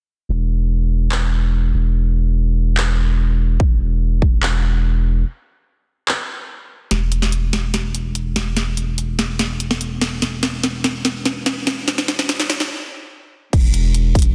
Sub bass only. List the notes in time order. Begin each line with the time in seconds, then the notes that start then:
0.29 E1
1.74 E1
3.60 E1
6.91 E1
8.36 E1
10.22 E1
11.87 E1
13.53 E1